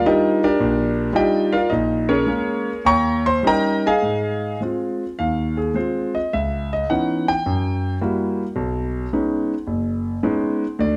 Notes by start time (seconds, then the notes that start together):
0.06 G3 D4 D#4 F4 G4 A#4 D#5
0.44 D4 G4 A#4 D5
0.60 A#1
1.12 G3 D4 D#4 F4 G4 D5 D#5 G5
1.53 F4 A#4 D5 F5
1.70 A#1 D#4 D#5
2.09 C#4 G#4 A#4 C#5
2.26 G#3 A#3 C#4
2.85 D#2 C#5 G5 A#5 C#6
3.26 C5 C6
3.43 G3 C#4 D#4 A#4 D#5
3.47 G5 A#5
3.86 G#4 D#5 F5 G#5
4.02 G#2
4.61 G#3 C4 F4
5.19 D#2 D#3 F5
5.57 G#4
5.74 G#3 C4 F4 C5
6.15 D#5
6.33 C#2 E5
6.73 D#5
6.90 E3 B3 C#4 D#4 F#5
7.28 G5
7.46 F#2
8.01 G3 A#3 E4 F#4
8.56 B1
9.13 G#3 B3 C#4 D#4
9.67 F#1
10.23 G#3 B3 C#4 D#4
10.79 D2 D3 D5